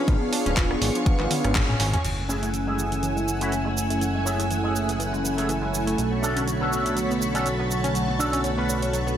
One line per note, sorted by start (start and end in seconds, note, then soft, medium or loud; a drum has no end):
0.00 2.01 C#5 medium
0.00 2.01 F5 medium
0.07 0.17 G#1 medium
0.07 0.21 F3 medium
0.07 1.52 B3 medium
0.07 1.53 D4 medium
0.07 1.53 F4 medium
0.07 1.53 G#4 loud
0.07 2.03 C#6 medium
0.07 kick loud
0.07 closed hi-hat medium
0.22 0.32 B3 medium
0.33 0.38 D4 loud
0.33 open hi-hat loud
0.46 0.76 D1 medium
0.46 0.56 C#4 loud
0.46 closed hi-hat medium
0.57 0.62 F3 medium
0.57 kick loud
0.57 clap loud
0.57 closed hi-hat medium
0.71 0.75 B3 loud
0.71 cross-stick medium
0.81 0.91 G#1 medium
0.81 0.90 F3 medium
0.81 open hi-hat medium
0.95 1.02 F3 medium
0.95 closed hi-hat medium
1.06 1.15 F3 loud
1.06 kick loud
1.06 closed hi-hat medium
1.20 1.27 G#1 medium
1.20 1.27 B3 loud
1.20 clap soft
1.31 1.36 C#4 medium
1.31 open hi-hat loud
1.31 high tom medium
1.44 1.75 G#1 loud
1.44 1.51 C#4 medium
1.44 cross-stick medium
1.44 closed hi-hat medium
1.55 1.61 G#4 medium
1.55 kick loud
1.55 clap loud
1.55 closed hi-hat medium
1.55 mid tom medium
1.69 1.79 C#4 loud
1.69 mid tom medium
1.80 1.98 G#1 medium
1.80 1.89 C#4 loud
1.80 open hi-hat medium
1.94 2.01 C#4 loud
1.94 closed hi-hat medium
1.94 mid tom medium
2.04 5.96 F#1 medium
2.04 2.18 E3 medium
2.04 5.95 A3 medium
2.04 9.17 A3 medium
2.04 5.95 C#4 medium
2.04 5.96 E4 medium
2.04 5.94 F#5 medium
2.04 5.94 G#5 medium
2.04 5.96 G#5 medium
2.04 5.94 E6 medium
2.04 closed hi-hat soft
2.04 crash medium
2.04 shaker soft
2.18 2.29 G#3 medium
2.28 2.48 A3 loud
2.28 2.34 C#4 medium
2.28 2.48 E4 medium
2.28 2.49 G#4 loud
2.28 shaker medium
2.43 2.53 A3 medium
2.43 closed hi-hat medium
2.43 shaker soft
2.54 2.59 E3 medium
2.54 closed hi-hat soft
2.54 shaker soft
2.67 2.72 G#3 medium
2.67 3.03 A3 medium
2.67 3.03 E4 medium
2.67 3.03 G#4 medium
2.78 2.87 E3 medium
2.78 shaker medium
2.92 2.99 E3 medium
2.92 closed hi-hat medium
2.92 shaker soft
3.03 3.12 E3 medium
3.03 closed hi-hat soft
3.03 shaker soft
3.16 3.23 G#3 medium
3.16 shaker soft
3.27 3.41 E3 medium
3.27 shaker medium
3.41 3.52 A3 loud
3.41 3.52 E4 medium
3.41 3.53 F#4 loud
3.41 closed hi-hat medium
3.41 shaker soft
3.52 3.65 E3 medium
3.52 closed hi-hat soft
3.52 shaker soft
3.65 3.70 G#3 medium
3.65 muted clean electric guitar stroke medium
3.76 3.85 E3 medium
3.76 muted clean electric guitar stroke soft
3.76 shaker medium
3.90 3.97 A3 medium
3.90 closed hi-hat medium
3.90 shaker soft
4.01 4.14 E3 medium
4.01 closed hi-hat soft
4.01 shaker soft
4.15 4.25 G#3 medium
4.25 4.45 A3 medium
4.25 4.31 C#4 medium
4.25 4.45 E4 medium
4.25 4.45 G#4 loud
4.25 shaker medium
4.39 4.50 A3 medium
4.39 closed hi-hat medium
4.39 shaker soft
4.50 4.56 E3 medium
4.50 closed hi-hat soft
4.50 shaker soft
4.63 4.68 G#3 medium
4.63 4.99 A3 medium
4.63 5.00 E4 medium
4.63 5.00 G#4 medium
4.75 4.84 E3 medium
4.75 shaker medium
4.89 4.96 E3 medium
4.89 closed hi-hat medium
4.89 shaker soft
4.99 5.08 E3 loud
4.99 closed hi-hat soft
4.99 shaker soft
5.13 5.20 G#3 medium
5.13 shaker soft
5.24 5.37 E3 medium
5.24 shaker medium
5.37 5.49 A3 loud
5.37 5.48 A3 loud
5.37 5.49 E4 medium
5.37 5.49 G#4 loud
5.37 closed hi-hat medium
5.37 shaker soft
5.49 5.62 E3 medium
5.49 closed hi-hat soft
5.49 shaker soft
5.62 5.67 G#3 medium
5.62 muted clean electric guitar stroke medium
5.73 5.82 E3 medium
5.73 muted clean electric guitar stroke soft
5.73 shaker medium
5.87 5.94 A3 loud
5.87 closed hi-hat medium
5.87 shaker soft
5.97 9.17 B1 medium
5.97 9.17 D3 medium
5.97 6.11 F#3 medium
5.97 9.17 A3 medium
5.97 9.17 F#4 medium
5.97 9.17 C#5 medium
5.97 9.17 A5 medium
5.97 9.17 B5 medium
5.97 9.17 C#6 medium
5.97 closed hi-hat soft
5.97 shaker soft
6.12 6.22 B3 medium
6.22 6.42 C#4 loud
6.22 6.28 D4 medium
6.22 6.42 D4 medium
6.22 6.42 A4 loud
6.22 shaker medium
6.36 6.47 C#4 loud
6.36 closed hi-hat medium
6.36 shaker soft
6.47 6.53 F#3 medium
6.47 closed hi-hat soft
6.47 shaker soft
6.61 6.65 B3 medium
6.61 6.96 C#4 medium
6.61 6.97 D4 medium
6.61 6.97 A4 medium
6.72 6.81 F#3 medium
6.72 shaker medium
6.85 6.92 F#3 medium
6.85 closed hi-hat medium
6.85 shaker soft
6.96 7.05 F#3 medium
6.96 closed hi-hat soft
6.96 shaker soft
7.10 7.17 B3 medium
7.10 shaker soft
7.21 7.34 F#3 medium
7.21 shaker medium
7.34 7.45 C#4 loud
7.34 7.46 D4 medium
7.34 7.46 A4 loud
7.34 closed hi-hat medium
7.34 shaker soft
7.46 7.59 F#3 medium
7.46 closed hi-hat soft
7.46 shaker soft
7.59 7.64 B3 medium
7.59 muted clean electric guitar stroke medium
7.70 7.79 F#3 medium
7.70 muted clean electric guitar stroke soft
7.70 shaker medium
7.84 7.91 C#4 loud
7.84 closed hi-hat medium
7.84 shaker soft
7.95 8.08 F#3 medium
7.95 closed hi-hat soft
7.95 shaker soft
8.08 8.19 B3 medium
8.19 8.38 C#4 loud
8.19 8.25 D4 medium
8.19 8.39 D4 medium
8.19 8.39 A4 loud
8.19 shaker medium
8.33 8.43 C#4 loud
8.33 closed hi-hat medium
8.33 shaker soft
8.44 8.49 F#3 medium
8.44 closed hi-hat soft
8.44 shaker soft
8.57 8.62 B3 medium
8.57 8.93 C#4 medium
8.57 8.93 D4 medium
8.57 8.94 B4 medium
8.69 8.77 F#3 medium
8.69 shaker medium
8.82 8.89 F#3 medium
8.82 closed hi-hat medium
8.82 shaker soft
8.93 9.02 F#3 loud
8.93 closed hi-hat soft
8.93 shaker soft
9.07 9.14 B3 medium
9.07 shaker soft